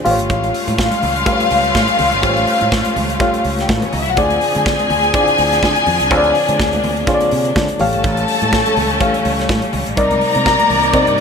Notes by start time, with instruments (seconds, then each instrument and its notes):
0.05 fingered electric bass A1, string section G3 A3 C#4 F4 F5, reed electric piano A3 F4 G4 C5 F5, open hi-hat, low conga
0.11 reed electric piano C#5
0.19 fingered electric bass G1, closed hi-hat
0.30 fingered electric bass A1, kick, closed hi-hat, muted conga
0.43 closed hi-hat, muted conga
0.54 open hi-hat
0.67 fingered electric bass A2, closed hi-hat, high conga
0.78 kick, snare, muted conga
0.91 closed hi-hat, muted conga, high conga
1.02 fingered electric bass C#2, open hi-hat, low conga
1.16 closed hi-hat
1.26 reed electric piano A3 F4 G4 B4 F5, kick, closed hi-hat
1.33 reed electric piano C#5
1.40 closed hi-hat, muted conga
1.51 fingered electric bass C#2, open hi-hat
1.64 closed hi-hat
1.75 fingered electric bass A2, kick, snare, muted conga, high conga
1.88 closed hi-hat, muted conga
1.99 fingered electric bass C#2, open hi-hat, low conga
2.12 fingered electric bass G1, closed hi-hat
2.22 fingered electric bass A1, reed electric piano A3 F4 G4 C5 F5, kick, closed hi-hat, muted conga
2.29 reed electric piano C#5
2.37 closed hi-hat, muted conga
2.47 open hi-hat
2.61 fingered electric bass A2, closed hi-hat, high conga
2.72 kick, snare, muted conga
2.85 closed hi-hat, muted conga, high conga
2.96 fingered electric bass C#2, open hi-hat, low conga
3.10 closed hi-hat
3.20 reed electric piano A3 F4 G4 C#5 F5, kick, closed hi-hat, muted conga
3.34 closed hi-hat, muted conga
3.45 fingered electric bass C#2, open hi-hat
3.58 string section G3 G4, snare, closed hi-hat
3.69 fingered electric bass A2, string section A3 A4, kick, snare, high conga
3.77 string section B3 B4
3.82 string section C#4 C#5, closed hi-hat, muted conga, low conga
3.93 fingered electric bass C#2, string section D#4 D#5, open hi-hat, low conga
4.01 string section E4 E5
4.06 fingered electric bass B1, string section F#4 F#5, closed hi-hat
4.17 fingered electric bass D2, reed electric piano D3 C4 D#4 G#4 D5, string section F3 C4 D4 G#4 G#5, kick, closed hi-hat, muted conga
4.23 reed electric piano F4
4.30 closed hi-hat, muted conga
4.41 open hi-hat
4.55 fingered electric bass D3, closed hi-hat, high conga
4.66 kick, snare
4.79 closed hi-hat, muted conga, high conga
4.90 fingered electric bass D2, open hi-hat, low conga
5.04 closed hi-hat
5.13 reed electric piano D3 C4 E4 G#4 D5, kick, closed hi-hat, muted conga
5.20 reed electric piano F4
5.28 closed hi-hat
5.38 fingered electric bass D2, open hi-hat
5.52 snare, closed hi-hat
5.63 fingered electric bass D3, kick, snare, muted conga, high conga
5.76 closed hi-hat
5.86 fingered electric bass F2, open hi-hat, low conga
6.00 fingered electric bass C2, closed hi-hat
6.10 fingered electric bass D2, reed electric piano D3 C4 F4 G#4 C#5, string section A#3, kick, closed hi-hat, muted conga
6.18 reed electric piano D5
6.24 closed hi-hat, muted conga
6.35 open hi-hat
6.49 fingered electric bass D3, closed hi-hat, high conga
6.60 fingered electric bass D2, kick, snare
6.73 closed hi-hat, muted conga, high conga
6.84 fingered electric bass D2, open hi-hat, low conga
6.97 closed hi-hat
7.07 reed electric piano D3 C4 F4 G#4 C#5, kick, closed hi-hat
7.15 reed electric piano D5
7.21 closed hi-hat, muted conga
7.31 fingered electric bass C3, open hi-hat
7.45 closed hi-hat
7.56 fingered electric bass D3, kick, snare, muted conga, high conga
7.68 closed hi-hat
7.79 fingered electric bass A1, reed electric piano E3 A3 G4 C#5 F5, string section G3 A3 C#4 A4 A5, open hi-hat, low conga
7.93 fingered electric bass G1, closed hi-hat
8.04 fingered electric bass A1, kick, closed hi-hat
8.17 closed hi-hat, muted conga
8.28 open hi-hat
8.42 fingered electric bass A2, closed hi-hat, high conga
8.53 kick, snare, muted conga
8.66 closed hi-hat, high conga
8.77 fingered electric bass C#2, open hi-hat, low conga
8.90 closed hi-hat
9.00 reed electric piano E3 A3 G4 C#5 F5, kick, closed hi-hat
9.14 closed hi-hat
9.25 fingered electric bass C#2, open hi-hat
9.39 snare, closed hi-hat
9.49 fingered electric bass A2, kick, snare, high conga
9.62 closed hi-hat
9.73 fingered electric bass C#2, open hi-hat, low conga
9.86 fingered electric bass A1, closed hi-hat
9.97 fingered electric bass C2, reed electric piano C3 C4 D#4 A#4 D5, string section C3 A#3 D#4 A#4 D5 A#5, kick, closed hi-hat, muted conga
10.11 closed hi-hat, muted conga, high conga
10.21 open hi-hat
10.35 fingered electric bass C3, closed hi-hat, high conga
10.46 kick, snare, muted conga
10.59 closed hi-hat, muted conga, high conga
10.70 fingered electric bass C2, open hi-hat, low conga
10.83 closed hi-hat
10.93 reed electric piano C3 C4 D#4 A#4 D5, fingered electric bass C3, kick, closed hi-hat
11.07 fingered electric bass G2, closed hi-hat